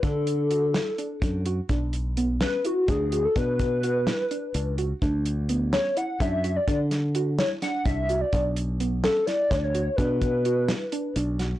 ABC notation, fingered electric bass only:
X:1
M:7/8
L:1/8
Q:1/4=127
K:Bdor
V:1 name="Fingered electric bass" clef=bass
D,4 z F,,2 | B,,,4 z D,,2 | B,,4 z C,,2 | D,,4 z F,,2 |
D,4 z =C,,2 | B,,,4 z D,,2 | B,,4 z B,,,2 |]